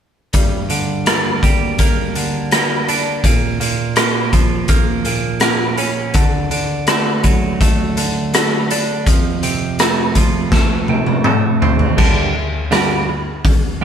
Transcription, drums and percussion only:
0.33 kick, closed hi-hat
0.70 closed hi-hat
1.06 cross-stick, closed hi-hat
1.43 kick, closed hi-hat
1.79 kick, closed hi-hat
2.15 closed hi-hat
2.51 cross-stick, closed hi-hat
2.88 closed hi-hat
3.24 kick, closed hi-hat
3.61 closed hi-hat
3.96 cross-stick, closed hi-hat
4.33 kick, closed hi-hat
4.68 kick, closed hi-hat
5.05 closed hi-hat
5.40 cross-stick, closed hi-hat
5.78 closed hi-hat
6.14 kick, closed hi-hat
6.51 closed hi-hat
6.87 cross-stick, closed hi-hat
7.24 kick, closed hi-hat
7.61 kick, closed hi-hat
7.97 closed hi-hat
8.34 cross-stick, closed hi-hat
8.71 closed hi-hat
9.06 kick, closed hi-hat
9.43 closed hi-hat
9.79 cross-stick, closed hi-hat
10.15 kick, closed hi-hat
10.52 kick, snare
10.88 high tom
11.06 high tom
11.24 mid tom
11.62 floor tom
11.79 floor tom
11.98 kick, crash
12.72 cross-stick, open hi-hat
13.45 kick, open hi-hat

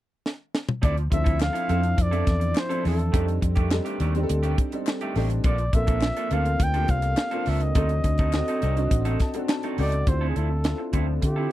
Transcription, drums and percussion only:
0.26 snare
0.55 snare
0.69 mid tom
0.83 kick, closed hi-hat
0.97 closed hi-hat
1.12 kick, closed hi-hat
1.26 kick, closed hi-hat
1.40 snare, clap
1.55 closed hi-hat
1.69 closed hi-hat
1.83 closed hi-hat
1.98 kick, closed hi-hat
2.13 closed hi-hat
2.27 kick, snare, closed hi-hat
2.41 closed hi-hat
2.55 snare, clap
2.71 closed hi-hat
2.85 snare, open hi-hat
2.99 closed hi-hat
3.14 kick, closed hi-hat
3.28 closed hi-hat
3.42 kick, closed hi-hat
3.56 kick, closed hi-hat
3.71 snare, clap
3.86 closed hi-hat
4.00 closed hi-hat
4.15 closed hi-hat
4.29 closed hi-hat
4.43 closed hi-hat
4.58 kick, closed hi-hat
4.72 closed hi-hat
4.87 snare, clap
5.01 closed hi-hat
5.16 snare, open hi-hat
5.30 closed hi-hat
5.44 kick, closed hi-hat
5.58 closed hi-hat
5.73 kick, closed hi-hat
5.87 kick, closed hi-hat
6.01 snare, clap
6.17 closed hi-hat
6.31 closed hi-hat
6.46 closed hi-hat
6.60 kick, closed hi-hat
6.74 closed hi-hat
6.88 kick, closed hi-hat
7.02 closed hi-hat
7.17 snare, clap
7.31 closed hi-hat
7.46 snare, open hi-hat
7.60 closed hi-hat
7.75 kick, closed hi-hat
7.89 closed hi-hat
8.04 kick, closed hi-hat
8.18 kick, closed hi-hat
8.33 snare, clap
8.48 closed hi-hat
8.62 closed hi-hat
8.77 closed hi-hat
8.91 kick, closed hi-hat
9.05 closed hi-hat
9.20 kick, snare, closed hi-hat
9.34 closed hi-hat
9.49 snare, clap
9.63 closed hi-hat
9.78 open hi-hat
9.92 closed hi-hat
10.07 kick, closed hi-hat
10.36 closed hi-hat
10.64 snare, closed hi-hat
10.93 kick, closed hi-hat
11.22 kick, closed hi-hat

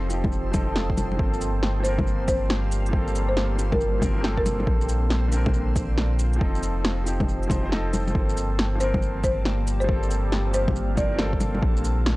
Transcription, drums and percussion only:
0.10 cabasa, shaker
0.24 kick, low bongo
0.32 shaker
0.54 kick, low bongo, cabasa, shaker
0.76 snare
0.90 kick
0.97 low bongo, cabasa, shaker
1.12 low bongo
1.19 kick
1.34 shaker
1.41 cabasa, shaker
1.63 snare
1.85 cabasa, shaker
1.99 kick, low bongo
2.07 shaker
2.28 kick, cabasa, shaker
2.50 snare
2.72 cabasa, shaker
2.86 cabasa
2.93 kick
3.08 shaker
3.15 cabasa, shaker
3.37 snare
3.59 cabasa, shaker
3.72 kick, low bongo
3.81 shaker
4.02 kick, low bongo, cabasa, shaker
4.24 snare
4.37 kick
4.46 low bongo, cabasa, shaker
4.60 low bongo
4.67 kick
4.81 shaker
4.89 cabasa, shaker
5.10 snare
5.32 cabasa, shaker
5.46 kick, low bongo
5.54 shaker
5.76 kick, cabasa, shaker
5.98 snare
6.19 cabasa, shaker
6.33 cabasa
6.41 kick
6.55 shaker
6.63 cabasa, shaker
6.85 snare
7.07 cabasa, shaker
7.20 kick, low bongo
7.28 shaker
7.43 cabasa
7.50 kick, low bongo, cabasa, shaker
7.72 snare
7.93 low bongo, cabasa, shaker
8.08 low bongo, shaker
8.15 kick
8.29 shaker
8.37 cabasa, shaker
8.59 snare
8.80 cabasa, shaker
8.94 kick, low bongo
9.02 shaker
9.24 kick, cabasa, shaker
9.45 snare
9.67 cabasa, shaker
9.81 cabasa
9.89 kick
10.03 shaker
10.11 cabasa, shaker
10.32 snare
10.54 cabasa, shaker
10.68 kick, low bongo
10.76 shaker
10.97 kick, low bongo, cabasa, shaker
11.19 snare
11.33 kick
11.40 low bongo, cabasa, shaker
11.55 low bongo
11.63 kick
11.77 shaker
11.85 cabasa, shaker
12.06 snare

